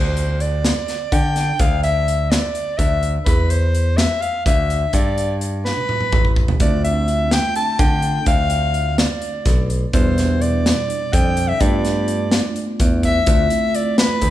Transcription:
Already playing: D2 C5
0.17 closed hi-hat
0.40 D5, closed hi-hat
0.65 snare, closed hi-hat
0.88 snare, closed hi-hat
1.12 D3 G5, kick, closed hi-hat
1.36 snare, closed hi-hat
1.59 D2 F5, kick, closed hi-hat
1.83 E5, closed hi-hat
2.08 closed hi-hat
2.31 D5, snare, closed hi-hat
2.55 closed hi-hat
2.78 D2 E5, kick, closed hi-hat
3.03 closed hi-hat
3.25 E2 B4, kick, closed hi-hat
3.50 C5, closed hi-hat
3.75 closed hi-hat
3.97 E5, snare, closed hi-hat
4.21 F5, closed hi-hat
4.46 D2 E5, kick, closed hi-hat
4.70 closed hi-hat
4.93 G2 D5, kick, closed hi-hat
5.18 closed hi-hat
5.41 closed hi-hat
5.65 B4, snare
5.77 high tom
5.89 mid tom
6.01 mid tom
6.12 A1, kick, mid tom
6.25 kick
6.36 kick
6.48 floor tom
6.59 D2 A3 C4 D4 F4 D5, kick, closed hi-hat
6.84 E5, closed hi-hat
7.08 closed hi-hat
7.31 G5, snare, closed hi-hat
7.56 A5, closed hi-hat
7.79 D3 G5, kick, closed hi-hat
8.02 closed hi-hat
8.26 D2 F5, kick, closed hi-hat
8.50 closed hi-hat
8.74 closed hi-hat
8.98 D5, snare, closed hi-hat
9.22 closed hi-hat
9.46 B1, kick, snare, closed hi-hat
9.70 closed hi-hat
9.93 E2 B2 G3 D4 E4 C5, kick, closed hi-hat
10.18 snare, closed hi-hat
10.41 D5, closed hi-hat
10.66 snare, closed hi-hat
10.90 closed hi-hat
11.13 F2 G5, kick, closed hi-hat
11.37 closed hi-hat
11.48 E5
11.60 G2 A3 B3 D4 F4 D5, kick, closed hi-hat
11.85 snare, closed hi-hat
12.08 closed hi-hat
12.31 snare, closed hi-hat
12.56 closed hi-hat
12.80 E2, kick, closed hi-hat
13.03 E5, kick, closed hi-hat
13.26 D2 A3 C4 E4 F4, kick, closed hi-hat
13.50 closed hi-hat
13.74 D5, closed hi-hat
13.98 B4, snare, closed hi-hat
14.21 D2, kick, closed hi-hat

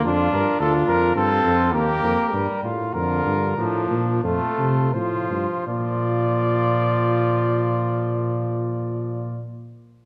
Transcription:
0.04 F2 D4 F4
0.32 G2 A#4
0.60 D2 D4 F4 A4
0.88 F2 A#4
1.16 G2 C4 F4 A4
1.44 F2
1.73 D#2 A#3 G4 A#4
2.03 F2
2.33 G2 G3
2.63 A2 F4
2.94 F2 D3 F4 A#4
3.25 G2
3.57 A2 F3 D4
3.90 A#2
4.24 F2 A3 F4 A4
4.59 C3
4.93 A2 F3 F4 C5
5.30 G2
5.67 A#2 F3 F4 D5

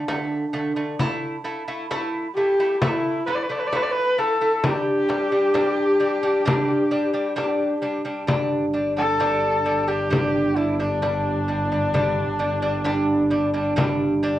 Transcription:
0.08 D3 A3, frame drum
0.53 D3 A3, frame drum
0.76 D3 A3
0.99 A3 E4, frame drum
1.44 A3 E4
1.68 A3 E4
1.91 A3 E4, frame drum
2.35 A3 E4 G4
2.60 A3 E4
2.74 G4
2.81 A3 E4, frame drum
3.26 A3 E4 B4, frame drum
3.35 D5
3.42 B4
3.49 A3 E4 D5
3.59 B4
3.67 D5
3.72 A3 E4 B4, frame drum
3.82 D5
3.90 B4
4.18 A3 E4 A4, frame drum
4.41 A3 E4
4.64 G3 D4 G4, frame drum
5.08 G3 D4, frame drum
5.32 G3 D4
5.54 G3 D4, frame drum
6.00 G3 D4, frame drum
6.23 G3 D4
6.45 G3 D4, frame drum
6.91 G3 D4, frame drum
7.13 G3 D4
7.36 G3 D4, frame drum
7.82 G3 D4, frame drum
8.05 G3 D4
8.27 G1 G3 D4, frame drum
8.73 G3 D4, frame drum
8.96 G3 D4 A4
9.20 G3 D4, frame drum
9.65 G3 D4, frame drum
9.87 G3 D4 G4
10.10 G3 D4, frame drum
10.56 G3 D4 E4
10.79 G3 D4
11.02 G3 D4, frame drum
11.48 G3 D4, frame drum
11.72 G3 D4
11.94 G3 D4, frame drum
12.39 G3 D4, frame drum
12.62 G3 D4
12.84 G3 D4, frame drum
13.30 G3 D4, frame drum
13.54 G3 D4
13.76 G3 D4, frame drum
14.23 G3 D4

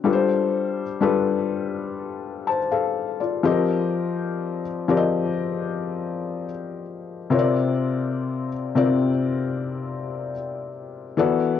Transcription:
0.04 G3 D4 F4 A4 B4
0.13 C5
1.01 G3 D4 F4 A4 B4
2.47 C5 A5
2.71 A4 F5
3.20 F4 D5
3.43 F3 C4 G4 A4 D#5
3.51 A#4
4.88 F3 C4 G4 A#4 D5
4.97 D#5
7.30 C3 C4 F4 A#4 C#5
7.39 D5
8.75 C3 C4 F4 A#4 D5
11.17 E3 B3 F#4 A4 D5

